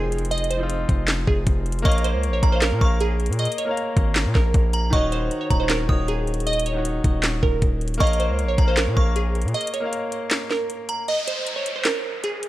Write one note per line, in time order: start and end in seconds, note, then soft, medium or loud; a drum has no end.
0.00 0.85 F1 loud
0.00 0.57 F3 medium
0.00 0.59 C4 medium
0.00 0.61 D#4 medium
0.00 0.29 G#4 medium
0.00 1.87 G#4 loud
0.00 impact medium
0.12 closed hi-hat medium
0.18 closed hi-hat medium
0.25 closed hi-hat medium
0.31 0.47 D#5 loud
0.31 closed hi-hat medium
0.38 closed hi-hat medium
0.44 closed hi-hat medium
0.50 1.23 C5 medium
0.50 closed hi-hat medium
0.57 1.11 F3 medium
0.57 1.12 C4 medium
0.57 1.13 D#4 medium
0.63 1.14 F4 medium
0.70 closed hi-hat medium
0.89 1.26 F1 loud
0.89 kick medium
0.89 closed hi-hat medium
1.08 snare loud
1.08 clap loud
1.08 closed hi-hat medium
1.27 1.46 F1 loud
1.27 1.82 G#4 medium
1.27 kick medium
1.47 1.84 F1 loud
1.47 kick loud
1.47 closed hi-hat medium
1.66 closed hi-hat medium
1.72 closed hi-hat medium
1.79 2.30 A#3 loud
1.79 closed hi-hat medium
1.84 2.15 A#1 loud
1.84 2.31 A#4 medium
1.84 2.31 C#5 medium
1.84 2.01 D#5 loud
1.84 2.32 F5 loud
1.84 2.39 C#6 loud
1.84 kick loud
1.84 closed hi-hat medium
1.92 closed hi-hat medium
1.98 closed hi-hat medium
2.04 2.31 C5 medium
2.04 closed hi-hat medium
2.14 2.30 C#2 loud
2.23 closed hi-hat medium
2.28 2.42 A#1 loud
2.33 2.49 C#5 medium
2.43 2.73 A#1 loud
2.43 2.79 A#5 medium
2.43 kick medium
2.43 closed hi-hat medium
2.50 2.71 A#3 medium
2.50 2.72 A#4 medium
2.50 2.61 C5 medium
2.50 2.73 C#5 medium
2.55 2.74 F5 medium
2.62 2.98 A#4 medium
2.62 snare loud
2.62 clap loud
2.62 closed hi-hat medium
2.72 2.81 A#2 loud
2.78 3.31 A#1 loud
2.78 3.32 A#3 medium
2.78 3.33 A#4 medium
2.78 3.34 C#5 medium
2.78 3.00 C#6 medium
2.78 kick medium
2.84 3.35 F5 medium
3.00 3.37 G#4 medium
3.00 closed hi-hat medium
3.20 closed hi-hat medium
3.26 3.48 A#2 loud
3.26 closed hi-hat medium
3.33 closed hi-hat medium
3.39 3.55 D#5 loud
3.39 closed hi-hat medium
3.45 closed hi-hat medium
3.52 closed hi-hat medium
3.58 4.31 C#5 medium
3.58 closed hi-hat medium
3.65 4.19 A#3 medium
3.65 4.20 A#4 medium
3.65 4.21 C#5 medium
3.71 4.22 F5 medium
3.77 closed hi-hat medium
3.97 4.27 G#1 loud
3.97 kick medium
3.97 closed hi-hat medium
4.15 snare loud
4.15 clap loud
4.15 closed hi-hat medium
4.25 4.35 A#2 loud
4.35 4.54 A#1 loud
4.35 4.89 A#4 medium
4.35 kick loud
4.35 snare medium
4.54 4.91 A#1 loud
4.54 kick loud
4.54 closed hi-hat medium
4.73 4.92 A#5 medium
4.73 closed hi-hat medium
4.90 5.30 D#1 loud
4.90 5.37 D#3 loud
4.90 5.38 D#4 medium
4.90 5.39 F#4 loud
4.90 5.09 D#5 loud
4.90 5.47 C#6 loud
4.90 kick loud
4.90 closed hi-hat medium
4.96 5.40 C#5 loud
5.12 5.39 C5 medium
5.12 closed hi-hat medium
5.31 closed hi-hat medium
5.41 5.57 C#5 medium
5.50 5.87 D#1 loud
5.50 5.87 A#5 medium
5.50 kick medium
5.50 closed hi-hat medium
5.57 5.78 D#3 medium
5.57 5.79 D#4 medium
5.57 5.80 F#4 medium
5.57 5.68 C5 medium
5.63 5.81 C#5 medium
5.69 6.06 A#4 medium
5.69 snare loud
5.69 clap loud
5.69 closed hi-hat medium
5.86 7.00 D#1 loud
5.86 6.40 D#3 medium
5.86 6.41 D#4 medium
5.86 6.42 F#4 medium
5.86 6.07 D#6 medium
5.86 kick loud
5.92 6.43 C#5 medium
6.08 6.44 G#4 medium
6.08 closed hi-hat medium
6.27 closed hi-hat medium
6.34 closed hi-hat medium
6.40 closed hi-hat medium
6.47 6.63 D#5 loud
6.47 closed hi-hat medium
6.53 closed hi-hat medium
6.59 closed hi-hat medium
6.66 7.39 C#5 medium
6.66 closed hi-hat medium
6.73 7.27 D#3 medium
6.73 7.27 D#4 medium
6.73 7.28 F#4 medium
6.78 7.29 C#5 medium
6.85 closed hi-hat medium
7.04 7.41 D#1 loud
7.04 kick loud
7.04 closed hi-hat medium
7.23 snare loud
7.23 clap loud
7.23 closed hi-hat medium
7.43 7.61 D#1 loud
7.43 7.97 A#4 medium
7.43 kick medium
7.62 7.99 D#1 loud
7.62 kick loud
7.62 closed hi-hat medium
7.81 closed hi-hat medium
7.88 closed hi-hat medium
7.94 8.45 A#3 medium
7.94 closed hi-hat medium
8.00 8.31 A#1 loud
8.00 8.46 A#4 medium
8.00 8.47 C#5 loud
8.00 8.17 D#5 loud
8.00 8.48 F5 loud
8.00 8.55 C#6 loud
8.00 kick loud
8.00 closed hi-hat medium
8.07 closed hi-hat medium
8.13 closed hi-hat medium
8.20 8.47 C5 medium
8.20 closed hi-hat medium
8.29 8.45 C#2 loud
8.39 closed hi-hat medium
8.44 8.57 A#1 loud
8.48 8.65 C#5 medium
8.58 8.89 A#1 loud
8.58 8.94 A#5 medium
8.58 kick medium
8.58 closed hi-hat medium
8.65 8.86 A#3 medium
8.65 8.87 A#4 medium
8.65 8.76 C5 medium
8.65 8.88 C#5 medium
8.71 8.89 F5 medium
8.77 9.14 A#4 medium
8.77 snare loud
8.77 clap loud
8.77 closed hi-hat medium
8.87 8.96 A#2 loud
8.94 9.46 A#1 loud
8.94 9.48 A#3 medium
8.94 9.49 A#4 medium
8.94 9.50 C#5 medium
8.94 9.15 C#6 medium
8.94 kick loud
8.99 9.50 F5 medium
9.16 9.52 G#4 medium
9.16 closed hi-hat medium
9.35 closed hi-hat medium
9.42 9.54 A#2 loud
9.42 closed hi-hat medium
9.48 closed hi-hat medium
9.54 9.71 D#5 loud
9.54 closed hi-hat medium
9.61 closed hi-hat medium
9.67 closed hi-hat medium
9.74 10.47 C#5 medium
9.74 closed hi-hat medium
9.80 10.34 A#3 medium
9.80 10.35 A#4 medium
9.80 10.36 C#5 medium
9.86 10.37 F5 medium
9.93 closed hi-hat medium
10.12 closed hi-hat medium
10.31 snare loud
10.31 clap loud
10.31 closed hi-hat medium
10.51 11.05 A#4 medium
10.51 snare medium
10.70 closed hi-hat medium
10.89 11.07 A#5 medium
10.89 closed hi-hat medium
11.08 11.25 D#5 loud
11.08 closed hi-hat medium
11.08 downlifter medium
11.28 11.55 C5 medium
11.28 closed hi-hat medium
11.47 closed hi-hat medium
11.56 11.72 C#5 medium
11.66 closed hi-hat medium
11.76 11.84 C5 medium
11.85 12.21 A#4 loud
11.85 snare loud
11.85 clap loud
11.85 closed hi-hat medium
12.24 12.49 G#4 medium
12.24 closed hi-hat medium
12.43 closed hi-hat medium